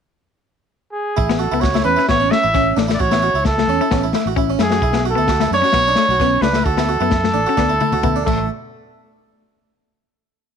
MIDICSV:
0, 0, Header, 1, 6, 480
1, 0, Start_track
1, 0, Key_signature, 3, "major"
1, 0, Tempo, 458015
1, 1229, Time_signature, 4, 2, 24, 8
1, 11075, End_track
2, 0, Start_track
2, 0, Title_t, "Trumpet"
2, 0, Program_c, 0, 56
2, 966, Note_on_c, 0, 68, 76
2, 1454, Note_on_c, 0, 69, 76
2, 1470, Note_off_c, 0, 68, 0
2, 1679, Note_on_c, 0, 73, 91
2, 1694, Note_off_c, 0, 69, 0
2, 1925, Note_off_c, 0, 73, 0
2, 1931, Note_on_c, 0, 71, 103
2, 2162, Note_off_c, 0, 71, 0
2, 2186, Note_on_c, 0, 73, 103
2, 2419, Note_on_c, 0, 76, 98
2, 2435, Note_off_c, 0, 73, 0
2, 2902, Note_off_c, 0, 76, 0
2, 3078, Note_on_c, 0, 74, 74
2, 3144, Note_on_c, 0, 73, 113
2, 3160, Note_off_c, 0, 74, 0
2, 3620, Note_off_c, 0, 73, 0
2, 3626, Note_on_c, 0, 69, 98
2, 4300, Note_off_c, 0, 69, 0
2, 4841, Note_on_c, 0, 68, 96
2, 5276, Note_off_c, 0, 68, 0
2, 5347, Note_on_c, 0, 69, 93
2, 5769, Note_off_c, 0, 69, 0
2, 5802, Note_on_c, 0, 73, 125
2, 6722, Note_on_c, 0, 71, 100
2, 6737, Note_off_c, 0, 73, 0
2, 6962, Note_on_c, 0, 69, 96
2, 6978, Note_off_c, 0, 71, 0
2, 8636, Note_off_c, 0, 69, 0
2, 8642, Note_on_c, 0, 69, 81
2, 8873, Note_off_c, 0, 69, 0
2, 11075, End_track
3, 0, Start_track
3, 0, Title_t, "Harpsichord"
3, 0, Program_c, 1, 6
3, 1223, Note_on_c, 1, 64, 79
3, 1454, Note_off_c, 1, 64, 0
3, 1457, Note_on_c, 1, 66, 73
3, 1583, Note_off_c, 1, 66, 0
3, 1588, Note_on_c, 1, 64, 68
3, 1689, Note_on_c, 1, 66, 80
3, 1699, Note_off_c, 1, 64, 0
3, 1819, Note_off_c, 1, 66, 0
3, 1825, Note_on_c, 1, 64, 69
3, 1930, Note_on_c, 1, 61, 76
3, 1937, Note_off_c, 1, 64, 0
3, 2057, Note_on_c, 1, 64, 71
3, 2059, Note_off_c, 1, 61, 0
3, 2293, Note_off_c, 1, 64, 0
3, 2305, Note_on_c, 1, 61, 61
3, 2537, Note_off_c, 1, 61, 0
3, 2550, Note_on_c, 1, 64, 66
3, 2659, Note_off_c, 1, 64, 0
3, 2664, Note_on_c, 1, 61, 78
3, 2892, Note_off_c, 1, 61, 0
3, 2899, Note_on_c, 1, 62, 72
3, 3020, Note_on_c, 1, 64, 65
3, 3022, Note_off_c, 1, 62, 0
3, 3133, Note_off_c, 1, 64, 0
3, 3137, Note_on_c, 1, 66, 89
3, 3261, Note_off_c, 1, 66, 0
3, 3263, Note_on_c, 1, 64, 65
3, 3374, Note_off_c, 1, 64, 0
3, 3380, Note_on_c, 1, 66, 75
3, 3502, Note_off_c, 1, 66, 0
3, 3513, Note_on_c, 1, 64, 69
3, 3739, Note_off_c, 1, 64, 0
3, 3868, Note_on_c, 1, 61, 83
3, 3985, Note_off_c, 1, 61, 0
3, 3995, Note_on_c, 1, 64, 74
3, 4099, Note_off_c, 1, 64, 0
3, 4114, Note_on_c, 1, 61, 83
3, 4227, Note_on_c, 1, 64, 61
3, 4228, Note_off_c, 1, 61, 0
3, 4334, Note_off_c, 1, 64, 0
3, 4347, Note_on_c, 1, 64, 78
3, 4464, Note_off_c, 1, 64, 0
3, 4476, Note_on_c, 1, 66, 65
3, 4579, Note_off_c, 1, 66, 0
3, 4586, Note_on_c, 1, 64, 83
3, 4703, Note_off_c, 1, 64, 0
3, 4712, Note_on_c, 1, 61, 68
3, 4816, Note_off_c, 1, 61, 0
3, 4818, Note_on_c, 1, 64, 80
3, 4938, Note_off_c, 1, 64, 0
3, 4944, Note_on_c, 1, 66, 66
3, 5052, Note_off_c, 1, 66, 0
3, 5059, Note_on_c, 1, 64, 92
3, 5285, Note_off_c, 1, 64, 0
3, 5296, Note_on_c, 1, 66, 78
3, 5417, Note_off_c, 1, 66, 0
3, 5426, Note_on_c, 1, 64, 67
3, 5532, Note_off_c, 1, 64, 0
3, 5547, Note_on_c, 1, 66, 77
3, 5662, Note_off_c, 1, 66, 0
3, 5675, Note_on_c, 1, 64, 72
3, 5777, Note_off_c, 1, 64, 0
3, 5795, Note_on_c, 1, 62, 83
3, 5906, Note_off_c, 1, 62, 0
3, 5911, Note_on_c, 1, 66, 72
3, 6135, Note_off_c, 1, 66, 0
3, 6160, Note_on_c, 1, 62, 69
3, 6379, Note_off_c, 1, 62, 0
3, 6398, Note_on_c, 1, 66, 67
3, 6498, Note_off_c, 1, 66, 0
3, 6509, Note_on_c, 1, 61, 83
3, 6730, Note_off_c, 1, 61, 0
3, 6746, Note_on_c, 1, 62, 69
3, 6861, Note_off_c, 1, 62, 0
3, 6870, Note_on_c, 1, 64, 61
3, 6973, Note_off_c, 1, 64, 0
3, 6981, Note_on_c, 1, 66, 79
3, 7098, Note_off_c, 1, 66, 0
3, 7111, Note_on_c, 1, 64, 73
3, 7214, Note_off_c, 1, 64, 0
3, 7218, Note_on_c, 1, 66, 75
3, 7337, Note_off_c, 1, 66, 0
3, 7341, Note_on_c, 1, 64, 72
3, 7569, Note_off_c, 1, 64, 0
3, 7689, Note_on_c, 1, 62, 72
3, 7812, Note_off_c, 1, 62, 0
3, 7823, Note_on_c, 1, 66, 79
3, 7930, Note_off_c, 1, 66, 0
3, 7935, Note_on_c, 1, 62, 75
3, 8056, Note_off_c, 1, 62, 0
3, 8064, Note_on_c, 1, 64, 68
3, 8167, Note_off_c, 1, 64, 0
3, 8180, Note_on_c, 1, 64, 75
3, 8299, Note_off_c, 1, 64, 0
3, 8310, Note_on_c, 1, 66, 70
3, 8415, Note_off_c, 1, 66, 0
3, 8420, Note_on_c, 1, 64, 72
3, 8539, Note_off_c, 1, 64, 0
3, 8551, Note_on_c, 1, 62, 72
3, 8655, Note_off_c, 1, 62, 0
3, 8676, Note_on_c, 1, 57, 84
3, 8891, Note_off_c, 1, 57, 0
3, 11075, End_track
4, 0, Start_track
4, 0, Title_t, "Clean electric guitar"
4, 0, Program_c, 2, 27
4, 1356, Note_on_c, 2, 59, 71
4, 1520, Note_off_c, 2, 59, 0
4, 1609, Note_on_c, 2, 59, 71
4, 1768, Note_off_c, 2, 59, 0
4, 1840, Note_on_c, 2, 57, 68
4, 2002, Note_off_c, 2, 57, 0
4, 2081, Note_on_c, 2, 61, 64
4, 2156, Note_off_c, 2, 61, 0
4, 2208, Note_on_c, 2, 59, 79
4, 2364, Note_off_c, 2, 59, 0
4, 2423, Note_on_c, 2, 57, 76
4, 2587, Note_off_c, 2, 57, 0
4, 2675, Note_on_c, 2, 61, 74
4, 2835, Note_off_c, 2, 61, 0
4, 2923, Note_on_c, 2, 57, 68
4, 3003, Note_off_c, 2, 57, 0
4, 3050, Note_on_c, 2, 57, 67
4, 3121, Note_off_c, 2, 57, 0
4, 3280, Note_on_c, 2, 59, 69
4, 3440, Note_off_c, 2, 59, 0
4, 3766, Note_on_c, 2, 57, 75
4, 3923, Note_off_c, 2, 57, 0
4, 3993, Note_on_c, 2, 61, 68
4, 4068, Note_off_c, 2, 61, 0
4, 4102, Note_on_c, 2, 59, 79
4, 4265, Note_off_c, 2, 59, 0
4, 4350, Note_on_c, 2, 57, 77
4, 4510, Note_off_c, 2, 57, 0
4, 4572, Note_on_c, 2, 61, 83
4, 4738, Note_off_c, 2, 61, 0
4, 4830, Note_on_c, 2, 57, 76
4, 4912, Note_off_c, 2, 57, 0
4, 4950, Note_on_c, 2, 57, 70
4, 5025, Note_off_c, 2, 57, 0
4, 5175, Note_on_c, 2, 59, 69
4, 5341, Note_off_c, 2, 59, 0
4, 5401, Note_on_c, 2, 59, 73
4, 5572, Note_off_c, 2, 59, 0
4, 5664, Note_on_c, 2, 57, 69
4, 5827, Note_off_c, 2, 57, 0
4, 5889, Note_on_c, 2, 61, 68
4, 5970, Note_off_c, 2, 61, 0
4, 6017, Note_on_c, 2, 59, 81
4, 6180, Note_off_c, 2, 59, 0
4, 6269, Note_on_c, 2, 57, 79
4, 6428, Note_off_c, 2, 57, 0
4, 6509, Note_on_c, 2, 59, 82
4, 6668, Note_off_c, 2, 59, 0
4, 6742, Note_on_c, 2, 57, 75
4, 6826, Note_off_c, 2, 57, 0
4, 6869, Note_on_c, 2, 57, 75
4, 6943, Note_off_c, 2, 57, 0
4, 7104, Note_on_c, 2, 59, 71
4, 7267, Note_off_c, 2, 59, 0
4, 7354, Note_on_c, 2, 59, 77
4, 7513, Note_off_c, 2, 59, 0
4, 7596, Note_on_c, 2, 57, 70
4, 7755, Note_off_c, 2, 57, 0
4, 7850, Note_on_c, 2, 61, 66
4, 7918, Note_off_c, 2, 61, 0
4, 7953, Note_on_c, 2, 59, 81
4, 8111, Note_off_c, 2, 59, 0
4, 8192, Note_on_c, 2, 57, 83
4, 8350, Note_off_c, 2, 57, 0
4, 8420, Note_on_c, 2, 59, 78
4, 8583, Note_off_c, 2, 59, 0
4, 8661, Note_on_c, 2, 57, 68
4, 8805, Note_off_c, 2, 57, 0
4, 11075, End_track
5, 0, Start_track
5, 0, Title_t, "Fingered electric bass"
5, 0, Program_c, 3, 33
5, 1241, Note_on_c, 3, 33, 100
5, 1558, Note_off_c, 3, 33, 0
5, 1586, Note_on_c, 3, 37, 73
5, 1900, Note_off_c, 3, 37, 0
5, 1942, Note_on_c, 3, 40, 82
5, 2056, Note_off_c, 3, 40, 0
5, 2191, Note_on_c, 3, 33, 90
5, 2400, Note_off_c, 3, 33, 0
5, 2559, Note_on_c, 3, 33, 95
5, 2866, Note_off_c, 3, 33, 0
5, 2899, Note_on_c, 3, 33, 83
5, 3112, Note_off_c, 3, 33, 0
5, 3146, Note_on_c, 3, 33, 104
5, 3467, Note_off_c, 3, 33, 0
5, 3498, Note_on_c, 3, 37, 77
5, 3813, Note_off_c, 3, 37, 0
5, 3851, Note_on_c, 3, 40, 88
5, 3967, Note_off_c, 3, 40, 0
5, 4108, Note_on_c, 3, 33, 90
5, 4315, Note_off_c, 3, 33, 0
5, 4460, Note_on_c, 3, 33, 95
5, 4772, Note_off_c, 3, 33, 0
5, 4807, Note_on_c, 3, 42, 91
5, 5022, Note_off_c, 3, 42, 0
5, 5058, Note_on_c, 3, 35, 104
5, 5379, Note_off_c, 3, 35, 0
5, 5423, Note_on_c, 3, 38, 81
5, 5733, Note_off_c, 3, 38, 0
5, 5774, Note_on_c, 3, 42, 82
5, 5886, Note_off_c, 3, 42, 0
5, 6016, Note_on_c, 3, 35, 98
5, 6226, Note_off_c, 3, 35, 0
5, 6377, Note_on_c, 3, 35, 94
5, 6689, Note_off_c, 3, 35, 0
5, 6719, Note_on_c, 3, 37, 83
5, 6937, Note_off_c, 3, 37, 0
5, 6973, Note_on_c, 3, 38, 103
5, 7296, Note_off_c, 3, 38, 0
5, 7340, Note_on_c, 3, 42, 80
5, 7652, Note_off_c, 3, 42, 0
5, 7691, Note_on_c, 3, 33, 89
5, 7805, Note_off_c, 3, 33, 0
5, 7943, Note_on_c, 3, 38, 90
5, 8151, Note_off_c, 3, 38, 0
5, 8300, Note_on_c, 3, 38, 91
5, 8613, Note_off_c, 3, 38, 0
5, 8668, Note_on_c, 3, 33, 87
5, 8887, Note_off_c, 3, 33, 0
5, 11075, End_track
6, 0, Start_track
6, 0, Title_t, "Drums"
6, 1235, Note_on_c, 9, 36, 85
6, 1340, Note_off_c, 9, 36, 0
6, 1359, Note_on_c, 9, 38, 68
6, 1464, Note_off_c, 9, 38, 0
6, 1713, Note_on_c, 9, 36, 85
6, 1715, Note_on_c, 9, 38, 60
6, 1818, Note_off_c, 9, 36, 0
6, 1820, Note_off_c, 9, 38, 0
6, 1836, Note_on_c, 9, 38, 66
6, 1940, Note_off_c, 9, 38, 0
6, 2079, Note_on_c, 9, 38, 23
6, 2184, Note_off_c, 9, 38, 0
6, 2185, Note_on_c, 9, 38, 70
6, 2190, Note_on_c, 9, 36, 83
6, 2290, Note_off_c, 9, 38, 0
6, 2294, Note_off_c, 9, 36, 0
6, 2432, Note_on_c, 9, 38, 66
6, 2537, Note_off_c, 9, 38, 0
6, 2666, Note_on_c, 9, 38, 26
6, 2668, Note_on_c, 9, 36, 87
6, 2770, Note_off_c, 9, 38, 0
6, 2773, Note_off_c, 9, 36, 0
6, 2910, Note_on_c, 9, 38, 69
6, 3014, Note_off_c, 9, 38, 0
6, 3031, Note_on_c, 9, 38, 62
6, 3136, Note_off_c, 9, 38, 0
6, 3145, Note_on_c, 9, 36, 79
6, 3250, Note_off_c, 9, 36, 0
6, 3266, Note_on_c, 9, 38, 61
6, 3370, Note_off_c, 9, 38, 0
6, 3615, Note_on_c, 9, 38, 69
6, 3623, Note_on_c, 9, 36, 80
6, 3719, Note_off_c, 9, 38, 0
6, 3727, Note_off_c, 9, 36, 0
6, 3753, Note_on_c, 9, 38, 57
6, 3858, Note_off_c, 9, 38, 0
6, 4096, Note_on_c, 9, 38, 67
6, 4103, Note_on_c, 9, 36, 84
6, 4201, Note_off_c, 9, 38, 0
6, 4208, Note_off_c, 9, 36, 0
6, 4330, Note_on_c, 9, 38, 62
6, 4435, Note_off_c, 9, 38, 0
6, 4575, Note_on_c, 9, 36, 92
6, 4680, Note_off_c, 9, 36, 0
6, 4810, Note_on_c, 9, 38, 70
6, 4915, Note_off_c, 9, 38, 0
6, 4931, Note_on_c, 9, 38, 62
6, 5036, Note_off_c, 9, 38, 0
6, 5051, Note_on_c, 9, 36, 88
6, 5156, Note_off_c, 9, 36, 0
6, 5167, Note_on_c, 9, 38, 66
6, 5272, Note_off_c, 9, 38, 0
6, 5530, Note_on_c, 9, 38, 75
6, 5535, Note_on_c, 9, 36, 82
6, 5635, Note_off_c, 9, 38, 0
6, 5640, Note_off_c, 9, 36, 0
6, 5659, Note_on_c, 9, 38, 59
6, 5763, Note_off_c, 9, 38, 0
6, 5898, Note_on_c, 9, 38, 22
6, 6000, Note_off_c, 9, 38, 0
6, 6000, Note_on_c, 9, 38, 69
6, 6013, Note_on_c, 9, 36, 86
6, 6105, Note_off_c, 9, 38, 0
6, 6118, Note_off_c, 9, 36, 0
6, 6242, Note_on_c, 9, 38, 67
6, 6346, Note_off_c, 9, 38, 0
6, 6492, Note_on_c, 9, 38, 26
6, 6496, Note_on_c, 9, 36, 91
6, 6596, Note_off_c, 9, 38, 0
6, 6600, Note_off_c, 9, 36, 0
6, 6732, Note_on_c, 9, 38, 75
6, 6837, Note_off_c, 9, 38, 0
6, 6847, Note_on_c, 9, 38, 66
6, 6952, Note_off_c, 9, 38, 0
6, 6976, Note_on_c, 9, 36, 82
6, 7081, Note_off_c, 9, 36, 0
6, 7099, Note_on_c, 9, 38, 67
6, 7204, Note_off_c, 9, 38, 0
6, 7452, Note_on_c, 9, 38, 72
6, 7458, Note_on_c, 9, 36, 89
6, 7556, Note_off_c, 9, 38, 0
6, 7563, Note_off_c, 9, 36, 0
6, 7586, Note_on_c, 9, 38, 57
6, 7690, Note_off_c, 9, 38, 0
6, 7934, Note_on_c, 9, 38, 45
6, 7939, Note_on_c, 9, 36, 78
6, 8039, Note_off_c, 9, 38, 0
6, 8044, Note_off_c, 9, 36, 0
6, 8183, Note_on_c, 9, 48, 54
6, 8288, Note_off_c, 9, 48, 0
6, 8305, Note_on_c, 9, 48, 59
6, 8410, Note_off_c, 9, 48, 0
6, 8419, Note_on_c, 9, 47, 73
6, 8422, Note_on_c, 9, 36, 97
6, 8524, Note_off_c, 9, 47, 0
6, 8527, Note_off_c, 9, 36, 0
6, 8666, Note_on_c, 9, 36, 91
6, 8671, Note_on_c, 9, 49, 68
6, 8771, Note_off_c, 9, 36, 0
6, 8776, Note_off_c, 9, 49, 0
6, 11075, End_track
0, 0, End_of_file